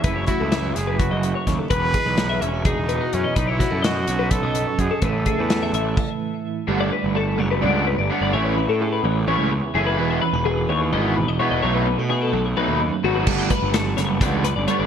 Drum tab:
CC |-------|-------|-------|----x--|
HH |xxxxxxx|xxxxxxx|xxxxxxx|xxxx---|
SD |--oo--o|--o----|-oo----|--o----|
BD |oo--o-o|oo--o--|oo--o-o|oo--o--|

CC |-------|-------|-------|-------|
HH |-------|-------|-------|-------|
SD |-------|-------|-------|-------|
BD |-------|-------|-------|-------|

CC |x------|
HH |-xxxxxx|
SD |--ooo--|
BD |oo--o--|